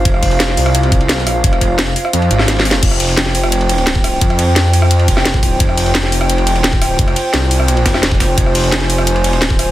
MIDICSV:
0, 0, Header, 1, 4, 480
1, 0, Start_track
1, 0, Key_signature, -4, "minor"
1, 0, Tempo, 346821
1, 73, Time_signature, 4, 2, 24, 8
1, 13444, End_track
2, 0, Start_track
2, 0, Title_t, "Analog synth pad"
2, 0, Program_c, 0, 89
2, 0, Note_on_c, 0, 65, 83
2, 0, Note_on_c, 0, 72, 77
2, 0, Note_on_c, 0, 77, 93
2, 3858, Note_off_c, 0, 65, 0
2, 3858, Note_off_c, 0, 72, 0
2, 3881, Note_off_c, 0, 77, 0
2, 3913, Note_on_c, 0, 65, 85
2, 3913, Note_on_c, 0, 72, 78
2, 3913, Note_on_c, 0, 79, 97
2, 11562, Note_off_c, 0, 79, 0
2, 11593, Note_on_c, 0, 80, 92
2, 13444, Note_off_c, 0, 65, 0
2, 13444, Note_off_c, 0, 72, 0
2, 13444, Note_off_c, 0, 80, 0
2, 13444, End_track
3, 0, Start_track
3, 0, Title_t, "Detuned saw bass"
3, 0, Program_c, 1, 39
3, 72, Note_on_c, 1, 29, 100
3, 773, Note_off_c, 1, 29, 0
3, 793, Note_on_c, 1, 36, 98
3, 1624, Note_off_c, 1, 36, 0
3, 1624, Note_on_c, 1, 35, 98
3, 1974, Note_off_c, 1, 35, 0
3, 1993, Note_on_c, 1, 29, 99
3, 2694, Note_off_c, 1, 29, 0
3, 2953, Note_on_c, 1, 41, 102
3, 3174, Note_off_c, 1, 41, 0
3, 3193, Note_on_c, 1, 32, 98
3, 3894, Note_off_c, 1, 32, 0
3, 3913, Note_on_c, 1, 29, 96
3, 5814, Note_off_c, 1, 29, 0
3, 5833, Note_on_c, 1, 41, 94
3, 7014, Note_off_c, 1, 41, 0
3, 7033, Note_on_c, 1, 29, 105
3, 7734, Note_off_c, 1, 29, 0
3, 7753, Note_on_c, 1, 29, 103
3, 9123, Note_off_c, 1, 29, 0
3, 9123, Note_on_c, 1, 27, 103
3, 9428, Note_off_c, 1, 27, 0
3, 9428, Note_on_c, 1, 25, 103
3, 9654, Note_off_c, 1, 25, 0
3, 9673, Note_on_c, 1, 29, 96
3, 9894, Note_off_c, 1, 29, 0
3, 10153, Note_on_c, 1, 36, 101
3, 10854, Note_off_c, 1, 36, 0
3, 10873, Note_on_c, 1, 29, 98
3, 11334, Note_off_c, 1, 29, 0
3, 11353, Note_on_c, 1, 29, 99
3, 11574, Note_off_c, 1, 29, 0
3, 11593, Note_on_c, 1, 29, 96
3, 12963, Note_off_c, 1, 29, 0
3, 12963, Note_on_c, 1, 27, 96
3, 13268, Note_off_c, 1, 27, 0
3, 13268, Note_on_c, 1, 25, 96
3, 13444, Note_off_c, 1, 25, 0
3, 13444, End_track
4, 0, Start_track
4, 0, Title_t, "Drums"
4, 73, Note_on_c, 9, 36, 114
4, 73, Note_on_c, 9, 42, 101
4, 73, Note_on_c, 9, 51, 94
4, 193, Note_on_c, 9, 37, 33
4, 211, Note_off_c, 9, 36, 0
4, 211, Note_off_c, 9, 42, 0
4, 212, Note_off_c, 9, 51, 0
4, 313, Note_on_c, 9, 36, 58
4, 313, Note_on_c, 9, 42, 69
4, 313, Note_on_c, 9, 46, 81
4, 331, Note_off_c, 9, 37, 0
4, 433, Note_on_c, 9, 51, 45
4, 451, Note_off_c, 9, 36, 0
4, 451, Note_off_c, 9, 42, 0
4, 451, Note_off_c, 9, 46, 0
4, 553, Note_off_c, 9, 51, 0
4, 553, Note_on_c, 9, 38, 118
4, 553, Note_on_c, 9, 42, 103
4, 553, Note_on_c, 9, 51, 83
4, 673, Note_off_c, 9, 38, 0
4, 673, Note_on_c, 9, 38, 35
4, 692, Note_off_c, 9, 42, 0
4, 692, Note_off_c, 9, 51, 0
4, 793, Note_on_c, 9, 46, 80
4, 794, Note_off_c, 9, 46, 0
4, 794, Note_on_c, 9, 46, 71
4, 812, Note_off_c, 9, 38, 0
4, 913, Note_on_c, 9, 37, 47
4, 914, Note_on_c, 9, 51, 43
4, 932, Note_off_c, 9, 46, 0
4, 1033, Note_off_c, 9, 51, 0
4, 1033, Note_on_c, 9, 42, 104
4, 1033, Note_on_c, 9, 51, 89
4, 1051, Note_off_c, 9, 37, 0
4, 1154, Note_off_c, 9, 51, 0
4, 1154, Note_on_c, 9, 51, 43
4, 1172, Note_off_c, 9, 42, 0
4, 1273, Note_off_c, 9, 51, 0
4, 1273, Note_on_c, 9, 36, 107
4, 1273, Note_on_c, 9, 42, 69
4, 1273, Note_on_c, 9, 51, 72
4, 1393, Note_off_c, 9, 51, 0
4, 1393, Note_on_c, 9, 51, 45
4, 1411, Note_off_c, 9, 36, 0
4, 1411, Note_off_c, 9, 42, 0
4, 1513, Note_off_c, 9, 51, 0
4, 1513, Note_on_c, 9, 38, 117
4, 1513, Note_on_c, 9, 42, 100
4, 1513, Note_on_c, 9, 51, 85
4, 1633, Note_off_c, 9, 38, 0
4, 1633, Note_on_c, 9, 38, 60
4, 1652, Note_off_c, 9, 42, 0
4, 1652, Note_off_c, 9, 51, 0
4, 1753, Note_on_c, 9, 37, 47
4, 1753, Note_on_c, 9, 46, 87
4, 1754, Note_on_c, 9, 51, 65
4, 1772, Note_off_c, 9, 38, 0
4, 1892, Note_off_c, 9, 37, 0
4, 1892, Note_off_c, 9, 46, 0
4, 1892, Note_off_c, 9, 51, 0
4, 1993, Note_on_c, 9, 36, 115
4, 1993, Note_on_c, 9, 42, 109
4, 1994, Note_on_c, 9, 51, 91
4, 2113, Note_off_c, 9, 51, 0
4, 2113, Note_on_c, 9, 51, 45
4, 2114, Note_on_c, 9, 37, 37
4, 2131, Note_off_c, 9, 36, 0
4, 2131, Note_off_c, 9, 42, 0
4, 2233, Note_off_c, 9, 51, 0
4, 2233, Note_on_c, 9, 36, 64
4, 2233, Note_on_c, 9, 42, 72
4, 2233, Note_on_c, 9, 51, 77
4, 2252, Note_off_c, 9, 37, 0
4, 2371, Note_off_c, 9, 36, 0
4, 2372, Note_off_c, 9, 42, 0
4, 2372, Note_off_c, 9, 51, 0
4, 2473, Note_on_c, 9, 38, 121
4, 2473, Note_on_c, 9, 42, 103
4, 2473, Note_on_c, 9, 51, 90
4, 2612, Note_off_c, 9, 38, 0
4, 2612, Note_off_c, 9, 42, 0
4, 2612, Note_off_c, 9, 51, 0
4, 2713, Note_on_c, 9, 46, 78
4, 2713, Note_on_c, 9, 51, 69
4, 2834, Note_on_c, 9, 37, 47
4, 2852, Note_off_c, 9, 46, 0
4, 2852, Note_off_c, 9, 51, 0
4, 2953, Note_on_c, 9, 42, 104
4, 2953, Note_on_c, 9, 51, 85
4, 2972, Note_off_c, 9, 37, 0
4, 3073, Note_off_c, 9, 51, 0
4, 3073, Note_on_c, 9, 51, 40
4, 3092, Note_off_c, 9, 42, 0
4, 3194, Note_off_c, 9, 51, 0
4, 3194, Note_on_c, 9, 42, 69
4, 3194, Note_on_c, 9, 51, 61
4, 3313, Note_on_c, 9, 37, 50
4, 3313, Note_on_c, 9, 38, 39
4, 3314, Note_off_c, 9, 51, 0
4, 3314, Note_on_c, 9, 51, 41
4, 3332, Note_off_c, 9, 42, 0
4, 3433, Note_off_c, 9, 38, 0
4, 3433, Note_off_c, 9, 51, 0
4, 3433, Note_on_c, 9, 38, 103
4, 3433, Note_on_c, 9, 42, 106
4, 3433, Note_on_c, 9, 51, 83
4, 3452, Note_off_c, 9, 37, 0
4, 3554, Note_off_c, 9, 38, 0
4, 3554, Note_on_c, 9, 38, 51
4, 3572, Note_off_c, 9, 42, 0
4, 3572, Note_off_c, 9, 51, 0
4, 3593, Note_off_c, 9, 38, 0
4, 3593, Note_on_c, 9, 38, 75
4, 3673, Note_on_c, 9, 46, 77
4, 3673, Note_on_c, 9, 51, 65
4, 3732, Note_off_c, 9, 38, 0
4, 3753, Note_on_c, 9, 38, 98
4, 3812, Note_off_c, 9, 46, 0
4, 3812, Note_off_c, 9, 51, 0
4, 3892, Note_off_c, 9, 38, 0
4, 3913, Note_on_c, 9, 36, 124
4, 3913, Note_on_c, 9, 42, 104
4, 3913, Note_on_c, 9, 49, 110
4, 3913, Note_on_c, 9, 51, 91
4, 4033, Note_on_c, 9, 37, 36
4, 4051, Note_off_c, 9, 42, 0
4, 4051, Note_off_c, 9, 49, 0
4, 4052, Note_off_c, 9, 36, 0
4, 4052, Note_off_c, 9, 51, 0
4, 4153, Note_on_c, 9, 42, 69
4, 4153, Note_on_c, 9, 46, 87
4, 4153, Note_on_c, 9, 51, 74
4, 4172, Note_off_c, 9, 37, 0
4, 4273, Note_off_c, 9, 51, 0
4, 4273, Note_on_c, 9, 51, 48
4, 4292, Note_off_c, 9, 42, 0
4, 4292, Note_off_c, 9, 46, 0
4, 4393, Note_off_c, 9, 51, 0
4, 4393, Note_on_c, 9, 38, 124
4, 4393, Note_on_c, 9, 42, 102
4, 4393, Note_on_c, 9, 51, 88
4, 4513, Note_off_c, 9, 38, 0
4, 4513, Note_on_c, 9, 38, 40
4, 4532, Note_off_c, 9, 42, 0
4, 4532, Note_off_c, 9, 51, 0
4, 4633, Note_on_c, 9, 46, 76
4, 4633, Note_on_c, 9, 51, 74
4, 4634, Note_off_c, 9, 51, 0
4, 4634, Note_on_c, 9, 51, 72
4, 4651, Note_off_c, 9, 38, 0
4, 4753, Note_off_c, 9, 51, 0
4, 4753, Note_on_c, 9, 37, 51
4, 4753, Note_on_c, 9, 51, 44
4, 4771, Note_off_c, 9, 46, 0
4, 4873, Note_on_c, 9, 42, 103
4, 4874, Note_off_c, 9, 51, 0
4, 4874, Note_on_c, 9, 51, 88
4, 4892, Note_off_c, 9, 37, 0
4, 4993, Note_off_c, 9, 51, 0
4, 4993, Note_on_c, 9, 51, 45
4, 5012, Note_off_c, 9, 42, 0
4, 5113, Note_off_c, 9, 51, 0
4, 5113, Note_on_c, 9, 42, 74
4, 5113, Note_on_c, 9, 51, 73
4, 5114, Note_off_c, 9, 51, 0
4, 5114, Note_on_c, 9, 51, 73
4, 5233, Note_off_c, 9, 51, 0
4, 5233, Note_on_c, 9, 51, 45
4, 5252, Note_off_c, 9, 42, 0
4, 5353, Note_off_c, 9, 51, 0
4, 5353, Note_on_c, 9, 38, 113
4, 5353, Note_on_c, 9, 42, 100
4, 5353, Note_on_c, 9, 51, 86
4, 5473, Note_off_c, 9, 38, 0
4, 5473, Note_on_c, 9, 36, 104
4, 5473, Note_on_c, 9, 38, 56
4, 5491, Note_off_c, 9, 42, 0
4, 5491, Note_off_c, 9, 51, 0
4, 5593, Note_on_c, 9, 37, 52
4, 5593, Note_on_c, 9, 46, 78
4, 5593, Note_on_c, 9, 51, 71
4, 5611, Note_off_c, 9, 36, 0
4, 5612, Note_off_c, 9, 38, 0
4, 5731, Note_off_c, 9, 37, 0
4, 5731, Note_off_c, 9, 46, 0
4, 5731, Note_off_c, 9, 51, 0
4, 5833, Note_on_c, 9, 36, 125
4, 5833, Note_on_c, 9, 42, 98
4, 5833, Note_on_c, 9, 51, 94
4, 5953, Note_off_c, 9, 51, 0
4, 5953, Note_on_c, 9, 37, 36
4, 5953, Note_on_c, 9, 51, 48
4, 5971, Note_off_c, 9, 36, 0
4, 5971, Note_off_c, 9, 42, 0
4, 6073, Note_off_c, 9, 51, 0
4, 6073, Note_on_c, 9, 42, 69
4, 6073, Note_on_c, 9, 51, 74
4, 6092, Note_off_c, 9, 37, 0
4, 6211, Note_off_c, 9, 42, 0
4, 6211, Note_off_c, 9, 51, 0
4, 6312, Note_on_c, 9, 38, 110
4, 6312, Note_on_c, 9, 51, 91
4, 6313, Note_off_c, 9, 38, 0
4, 6313, Note_on_c, 9, 38, 127
4, 6313, Note_on_c, 9, 42, 95
4, 6451, Note_off_c, 9, 51, 0
4, 6452, Note_off_c, 9, 38, 0
4, 6452, Note_off_c, 9, 42, 0
4, 6553, Note_on_c, 9, 46, 77
4, 6553, Note_on_c, 9, 51, 74
4, 6673, Note_on_c, 9, 37, 51
4, 6691, Note_off_c, 9, 46, 0
4, 6691, Note_off_c, 9, 51, 0
4, 6792, Note_on_c, 9, 42, 94
4, 6793, Note_on_c, 9, 51, 94
4, 6811, Note_off_c, 9, 37, 0
4, 6913, Note_off_c, 9, 51, 0
4, 6913, Note_on_c, 9, 51, 46
4, 6931, Note_off_c, 9, 42, 0
4, 7032, Note_off_c, 9, 51, 0
4, 7032, Note_on_c, 9, 42, 68
4, 7032, Note_on_c, 9, 51, 72
4, 7033, Note_off_c, 9, 51, 0
4, 7033, Note_on_c, 9, 36, 68
4, 7033, Note_on_c, 9, 51, 74
4, 7153, Note_on_c, 9, 37, 50
4, 7153, Note_on_c, 9, 38, 42
4, 7171, Note_off_c, 9, 36, 0
4, 7171, Note_off_c, 9, 42, 0
4, 7171, Note_off_c, 9, 51, 0
4, 7272, Note_off_c, 9, 38, 0
4, 7272, Note_on_c, 9, 38, 118
4, 7272, Note_on_c, 9, 51, 89
4, 7273, Note_off_c, 9, 38, 0
4, 7273, Note_on_c, 9, 38, 127
4, 7273, Note_on_c, 9, 42, 98
4, 7291, Note_off_c, 9, 37, 0
4, 7393, Note_off_c, 9, 38, 0
4, 7393, Note_on_c, 9, 36, 106
4, 7393, Note_on_c, 9, 38, 51
4, 7411, Note_off_c, 9, 42, 0
4, 7411, Note_off_c, 9, 51, 0
4, 7513, Note_off_c, 9, 36, 0
4, 7513, Note_on_c, 9, 36, 63
4, 7513, Note_on_c, 9, 46, 74
4, 7513, Note_on_c, 9, 51, 73
4, 7531, Note_off_c, 9, 38, 0
4, 7651, Note_off_c, 9, 36, 0
4, 7651, Note_off_c, 9, 46, 0
4, 7651, Note_off_c, 9, 51, 0
4, 7752, Note_on_c, 9, 51, 97
4, 7753, Note_on_c, 9, 36, 127
4, 7753, Note_on_c, 9, 42, 92
4, 7873, Note_on_c, 9, 37, 35
4, 7891, Note_off_c, 9, 36, 0
4, 7891, Note_off_c, 9, 42, 0
4, 7891, Note_off_c, 9, 51, 0
4, 7993, Note_on_c, 9, 42, 64
4, 7993, Note_on_c, 9, 46, 87
4, 7993, Note_on_c, 9, 51, 71
4, 8011, Note_off_c, 9, 37, 0
4, 8113, Note_off_c, 9, 51, 0
4, 8113, Note_on_c, 9, 51, 46
4, 8131, Note_off_c, 9, 42, 0
4, 8131, Note_off_c, 9, 46, 0
4, 8232, Note_off_c, 9, 51, 0
4, 8232, Note_on_c, 9, 38, 123
4, 8232, Note_on_c, 9, 51, 86
4, 8233, Note_off_c, 9, 38, 0
4, 8233, Note_on_c, 9, 38, 125
4, 8233, Note_on_c, 9, 42, 96
4, 8353, Note_off_c, 9, 38, 0
4, 8353, Note_on_c, 9, 38, 41
4, 8371, Note_off_c, 9, 42, 0
4, 8371, Note_off_c, 9, 51, 0
4, 8473, Note_on_c, 9, 46, 82
4, 8473, Note_on_c, 9, 51, 70
4, 8492, Note_off_c, 9, 38, 0
4, 8593, Note_off_c, 9, 51, 0
4, 8593, Note_on_c, 9, 37, 51
4, 8593, Note_on_c, 9, 51, 46
4, 8612, Note_off_c, 9, 46, 0
4, 8713, Note_off_c, 9, 51, 0
4, 8713, Note_on_c, 9, 42, 95
4, 8713, Note_on_c, 9, 51, 95
4, 8731, Note_off_c, 9, 37, 0
4, 8833, Note_off_c, 9, 51, 0
4, 8833, Note_on_c, 9, 51, 44
4, 8851, Note_off_c, 9, 42, 0
4, 8952, Note_off_c, 9, 51, 0
4, 8952, Note_on_c, 9, 42, 66
4, 8952, Note_on_c, 9, 51, 69
4, 8953, Note_off_c, 9, 51, 0
4, 8953, Note_on_c, 9, 51, 72
4, 9073, Note_off_c, 9, 51, 0
4, 9073, Note_on_c, 9, 51, 46
4, 9091, Note_off_c, 9, 42, 0
4, 9192, Note_on_c, 9, 38, 127
4, 9192, Note_on_c, 9, 42, 98
4, 9193, Note_off_c, 9, 38, 0
4, 9193, Note_off_c, 9, 51, 0
4, 9193, Note_on_c, 9, 38, 121
4, 9193, Note_on_c, 9, 51, 88
4, 9313, Note_off_c, 9, 38, 0
4, 9313, Note_on_c, 9, 36, 109
4, 9313, Note_on_c, 9, 38, 54
4, 9331, Note_off_c, 9, 42, 0
4, 9331, Note_off_c, 9, 51, 0
4, 9433, Note_on_c, 9, 37, 49
4, 9433, Note_on_c, 9, 46, 84
4, 9433, Note_on_c, 9, 51, 74
4, 9451, Note_off_c, 9, 36, 0
4, 9451, Note_off_c, 9, 38, 0
4, 9571, Note_off_c, 9, 37, 0
4, 9571, Note_off_c, 9, 46, 0
4, 9571, Note_off_c, 9, 51, 0
4, 9673, Note_on_c, 9, 36, 121
4, 9673, Note_on_c, 9, 42, 95
4, 9673, Note_on_c, 9, 51, 90
4, 9793, Note_off_c, 9, 51, 0
4, 9793, Note_on_c, 9, 37, 34
4, 9793, Note_on_c, 9, 51, 48
4, 9811, Note_off_c, 9, 36, 0
4, 9811, Note_off_c, 9, 42, 0
4, 9913, Note_off_c, 9, 51, 0
4, 9913, Note_on_c, 9, 42, 66
4, 9913, Note_on_c, 9, 51, 75
4, 9931, Note_off_c, 9, 37, 0
4, 10052, Note_off_c, 9, 42, 0
4, 10052, Note_off_c, 9, 51, 0
4, 10153, Note_on_c, 9, 38, 111
4, 10153, Note_on_c, 9, 51, 90
4, 10154, Note_off_c, 9, 38, 0
4, 10154, Note_on_c, 9, 38, 127
4, 10154, Note_on_c, 9, 42, 90
4, 10291, Note_off_c, 9, 51, 0
4, 10292, Note_off_c, 9, 38, 0
4, 10292, Note_off_c, 9, 42, 0
4, 10393, Note_on_c, 9, 46, 85
4, 10393, Note_on_c, 9, 51, 74
4, 10514, Note_on_c, 9, 37, 47
4, 10532, Note_off_c, 9, 46, 0
4, 10532, Note_off_c, 9, 51, 0
4, 10633, Note_on_c, 9, 51, 88
4, 10634, Note_on_c, 9, 42, 90
4, 10652, Note_off_c, 9, 37, 0
4, 10753, Note_off_c, 9, 51, 0
4, 10753, Note_on_c, 9, 51, 45
4, 10773, Note_off_c, 9, 42, 0
4, 10873, Note_off_c, 9, 51, 0
4, 10873, Note_on_c, 9, 36, 68
4, 10873, Note_on_c, 9, 38, 109
4, 10873, Note_on_c, 9, 51, 79
4, 10874, Note_off_c, 9, 51, 0
4, 10874, Note_on_c, 9, 42, 65
4, 10874, Note_on_c, 9, 51, 74
4, 10994, Note_off_c, 9, 38, 0
4, 10994, Note_on_c, 9, 37, 50
4, 10994, Note_on_c, 9, 38, 40
4, 11011, Note_off_c, 9, 36, 0
4, 11012, Note_off_c, 9, 42, 0
4, 11012, Note_off_c, 9, 51, 0
4, 11113, Note_off_c, 9, 38, 0
4, 11113, Note_on_c, 9, 38, 113
4, 11113, Note_on_c, 9, 51, 93
4, 11114, Note_off_c, 9, 38, 0
4, 11114, Note_on_c, 9, 38, 127
4, 11114, Note_on_c, 9, 42, 96
4, 11132, Note_off_c, 9, 37, 0
4, 11233, Note_off_c, 9, 38, 0
4, 11233, Note_on_c, 9, 36, 111
4, 11233, Note_on_c, 9, 38, 52
4, 11251, Note_off_c, 9, 51, 0
4, 11252, Note_off_c, 9, 42, 0
4, 11353, Note_off_c, 9, 36, 0
4, 11353, Note_off_c, 9, 38, 0
4, 11353, Note_on_c, 9, 36, 59
4, 11353, Note_on_c, 9, 38, 104
4, 11353, Note_on_c, 9, 46, 80
4, 11353, Note_on_c, 9, 51, 77
4, 11491, Note_off_c, 9, 36, 0
4, 11491, Note_off_c, 9, 38, 0
4, 11492, Note_off_c, 9, 46, 0
4, 11492, Note_off_c, 9, 51, 0
4, 11593, Note_on_c, 9, 36, 115
4, 11593, Note_on_c, 9, 42, 94
4, 11593, Note_on_c, 9, 51, 94
4, 11714, Note_on_c, 9, 37, 32
4, 11731, Note_off_c, 9, 36, 0
4, 11731, Note_off_c, 9, 51, 0
4, 11732, Note_off_c, 9, 42, 0
4, 11833, Note_on_c, 9, 46, 89
4, 11834, Note_on_c, 9, 42, 65
4, 11834, Note_on_c, 9, 51, 78
4, 11852, Note_off_c, 9, 37, 0
4, 11953, Note_off_c, 9, 51, 0
4, 11953, Note_on_c, 9, 51, 47
4, 11972, Note_off_c, 9, 42, 0
4, 11972, Note_off_c, 9, 46, 0
4, 12073, Note_off_c, 9, 51, 0
4, 12073, Note_on_c, 9, 38, 110
4, 12073, Note_on_c, 9, 51, 87
4, 12074, Note_off_c, 9, 38, 0
4, 12074, Note_on_c, 9, 38, 122
4, 12074, Note_on_c, 9, 42, 93
4, 12194, Note_off_c, 9, 38, 0
4, 12194, Note_on_c, 9, 38, 39
4, 12211, Note_off_c, 9, 51, 0
4, 12212, Note_off_c, 9, 42, 0
4, 12313, Note_on_c, 9, 46, 86
4, 12313, Note_on_c, 9, 51, 70
4, 12332, Note_off_c, 9, 38, 0
4, 12433, Note_off_c, 9, 51, 0
4, 12433, Note_on_c, 9, 51, 46
4, 12434, Note_on_c, 9, 37, 48
4, 12452, Note_off_c, 9, 46, 0
4, 12553, Note_on_c, 9, 42, 94
4, 12554, Note_off_c, 9, 51, 0
4, 12554, Note_on_c, 9, 51, 91
4, 12572, Note_off_c, 9, 37, 0
4, 12674, Note_off_c, 9, 51, 0
4, 12674, Note_on_c, 9, 51, 48
4, 12692, Note_off_c, 9, 42, 0
4, 12793, Note_off_c, 9, 51, 0
4, 12793, Note_on_c, 9, 42, 63
4, 12793, Note_on_c, 9, 51, 71
4, 12914, Note_off_c, 9, 51, 0
4, 12914, Note_on_c, 9, 51, 44
4, 12931, Note_off_c, 9, 42, 0
4, 13033, Note_off_c, 9, 51, 0
4, 13033, Note_on_c, 9, 38, 123
4, 13033, Note_on_c, 9, 42, 90
4, 13033, Note_on_c, 9, 51, 86
4, 13153, Note_on_c, 9, 36, 101
4, 13154, Note_off_c, 9, 38, 0
4, 13154, Note_on_c, 9, 38, 54
4, 13172, Note_off_c, 9, 42, 0
4, 13172, Note_off_c, 9, 51, 0
4, 13273, Note_on_c, 9, 37, 47
4, 13273, Note_on_c, 9, 46, 87
4, 13273, Note_on_c, 9, 51, 66
4, 13291, Note_off_c, 9, 36, 0
4, 13292, Note_off_c, 9, 38, 0
4, 13411, Note_off_c, 9, 37, 0
4, 13411, Note_off_c, 9, 46, 0
4, 13412, Note_off_c, 9, 51, 0
4, 13444, End_track
0, 0, End_of_file